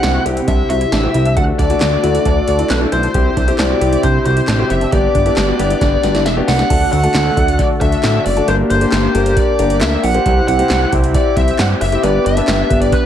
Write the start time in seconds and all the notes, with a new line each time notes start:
Already playing: C3 C4 E4 G4 F#5
0.03 C2 D4, snare, closed hi-hat
0.15 F#4
0.26 C2 C4 E4 G4, closed hi-hat
0.37 E4, closed hi-hat
0.48 C2 D4 E5, kick, closed hi-hat
0.70 C2 F#4 E5, closed hi-hat
0.81 E4, closed hi-hat
0.92 A1 D4, snare, closed hi-hat
1.03 C4 E4 F#4 G4
1.14 C2 E4, closed hi-hat
1.25 D4, closed hi-hat
1.37 D2 D3 A3 D4 F#4 A4 F#5, kick, closed hi-hat
1.59 D2 D4 D5, kick, closed hi-hat
1.70 A3 D4 E4 F#4, closed hi-hat
1.81 D2 D4, snare, clap, closed hi-hat
1.92 F#4
2.03 D2 A3 D4 E4 F#4, closed hi-hat
2.15 E4, closed hi-hat
2.25 D2 D4, kick, closed hi-hat
2.48 D2 F#4, closed hi-hat
2.59 E4, closed hi-hat
2.70 B1 D4 B4, snare, clap, closed hi-hat
2.81 A3 D4 E4 F#4
2.92 B1 E4 C5, closed hi-hat
3.03 D4, closed hi-hat
3.14 C2 C3 C4 E4 G4, kick, closed hi-hat
3.37 C2 D4, kick, closed hi-hat
3.48 C4 E4 G4, closed hi-hat
3.59 C2 D4 D5, snare, clap, closed hi-hat
3.70 F#4
3.81 C2 C4 E4 G4, closed hi-hat
3.92 E4, closed hi-hat
4.03 C2 D4 C5, kick, closed hi-hat
4.26 C2 F#4 C5, closed hi-hat
4.37 E4, closed hi-hat
4.48 A1 D4, snare, clap, closed hi-hat
4.59 C4 E4 F#4 G4
4.70 F#1 E4 E5, closed hi-hat
4.81 D4, closed hi-hat
4.92 G1 B3 D4 G4 D5, kick, closed hi-hat
5.15 G1 D4, kick, closed hi-hat
5.26 B3 D4 E4 G4, closed hi-hat
5.37 G1 D4, snare, clap, closed hi-hat
5.48 F#4
5.59 G1 B3 D4 E4 G4, closed hi-hat
5.70 E4, closed hi-hat
5.81 G1 D4, kick, snare, closed hi-hat
6.03 G1 F#4, snare, closed hi-hat
6.15 E4, snare, closed hi-hat
6.26 E1 D4 E5, snare, closed hi-hat
6.37 B3 D4 F#4 G4
6.48 C2 E4 F#5, snare, open hi-hat
6.59 D4, snare, closed hi-hat
6.70 D2 D3 A3 D4 F#4 A4, kick, closed hi-hat, crash
6.92 D2 F#5, closed hi-hat
7.03 A3 D4 F#4 A4, closed hi-hat
7.15 D2, snare, clap, closed hi-hat
7.37 D2 A3 D4 F#4 A4, kick, closed hi-hat
7.48 closed hi-hat
7.59 D5, kick, closed hi-hat
7.81 D2 A3 D4 F#4 A4 E5, kick, closed hi-hat
7.92 closed hi-hat
8.03 A2, snare, clap, closed hi-hat
8.26 F#1 D5, open hi-hat
8.37 A3 D4 F#4 A4, closed hi-hat
8.48 G1 A#3 D4 G4 A#4 C5, closed hi-hat
8.70 G1 C5, closed hi-hat
8.81 A#3 D4 G4 C5, closed hi-hat
8.92 G1, snare, clap, closed hi-hat
9.15 G1 A#3 D4 G4 A#4, closed hi-hat
9.26 closed hi-hat
9.37 D5, kick, closed hi-hat
9.59 G1 A#3 D4 G4 A#4, closed hi-hat
9.70 closed hi-hat
9.81 D2 E5, snare, clap, closed hi-hat
10.03 A#1 F#5, open hi-hat
10.14 A#3 D4 G4 C5, closed hi-hat
10.26 C2 C3 C4 E4 G4 C5, kick, closed hi-hat
10.48 C2 F#5, closed hi-hat
10.59 C4 E4 G4 C5, closed hi-hat
10.70 C2, snare, clap, closed hi-hat
10.92 C2 C4 E4 G4 C5, kick, closed hi-hat
11.04 closed hi-hat
11.14 D5, kick, closed hi-hat
11.37 C2 C4 E4 G4 C5 E5, kick, closed hi-hat
11.48 closed hi-hat
11.59 G2 F#5, snare, clap, closed hi-hat
11.81 F#1 E5, open hi-hat
11.92 C4 E4 G4 C5, closed hi-hat
12.03 G1 B3 D4 G4 B4 D5, closed hi-hat
12.26 G1 E5, closed hi-hat
12.37 B3 D4 G4 B4, closed hi-hat
12.48 G1, snare, clap, closed hi-hat
12.70 G1 B3 D4 G4 B4, kick, closed hi-hat
12.81 D5, closed hi-hat
12.92 B4, kick, closed hi-hat